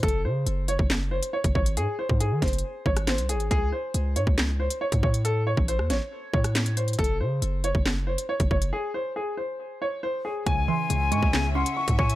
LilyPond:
<<
  \new Staff \with { instrumentName = "Flute" } { \time 4/4 \key cis \minor \tempo 4 = 138 r1 | r1 | r1 | r1 |
r1 | r1 | gis''2~ gis''8 fis''4 gis''8 | }
  \new Staff \with { instrumentName = "Upright piano" } { \time 4/4 \key cis \minor a'8 bis'4 cis''8 r8 bis'8 cis''8 cis''8 | gis'8 bis'8 gis'8 bis'4 cis''8 bis'8 gis'8 | gis'8 bis'4 cis''8 r8 bis'8 cis''8 cis''8 | a'8 cis''8 bis'8 cis''4 cis''4 bis'8 |
a'8 bis'4 cis''8 r8 bis'8 cis''8 cis''8 | gis'8 bis'8 gis'8 bis'4 cis''8 bis'8 gis'8 | gis''8 bis''4 cis'''8 r8 bis''8 cis'''8 cis'''8 | }
  \new Staff \with { instrumentName = "String section" } { \time 4/4 \key cis \minor r1 | r1 | r1 | r1 |
r1 | r1 | <cis cis' gis' e''>1 | }
  \new Staff \with { instrumentName = "Synth pluck" } { \clef bass \time 4/4 \key cis \minor r1 | r1 | r1 | r1 |
r1 | r1 | cis8 e8 cis8 gis8 cis8 cis'4 cis''8 | }
  \new Staff \with { instrumentName = "808-style bass" } { \clef bass \time 4/4 \key cis \minor fis,,8 cis8 fis,,8. fis,,4 r8 fis,,16 gis,,8 | gis,16 r8 gis,8 dis16 fis,,8 r8 gis,,8. bis,,16. gis,,16. | cis,8 r8 cis,8 gis,16 cis,4 r8 gis,16 a,8~ | a,8. a,,8 e,16 a,,16 r8. a,4. |
fis,,8 cis8 fis,,8. fis,,4 r8 fis,,16 fis,,8 | r1 | cis,8 r8 cis,8 gis,16 cis,4 r8 gis,16 a,8 | }
  \new DrumStaff \with { instrumentName = "Drums" } \drummode { \time 4/4 <hh bd>32 hh8. r32 hh8 hh16 bd16 <hc sn>8. hh16 r16 <hh bd>16 bd16 hh16 | hh8. bd16 hh8 <hh bd sn>32 hh32 hh32 hh32 r8 bd16 <hh ss>16 <hc hh sn>16 hh16 hh16 hh16 | <hh bd>4 hh8 hh16 bd16 <hc sn>8. hh16 r16 <hh bd>16 bd16 hh16 | hh8. bd16 hh16 ss16 <hh sn>8 r8 bd16 <hh ss>16 <hc hh sn>16 hh16 hh16 hh32 hh32 |
<hh bd>32 hh8. r32 hh8 hh16 bd16 <hc sn>8. hh16 r16 <hh bd>16 bd16 hh16 | r4 r4 r4 r4 | <hh bd>4 hh8 hh16 bd16 <hc sn>8. hh16 r16 <hh bd>16 bd16 hh16 | }
>>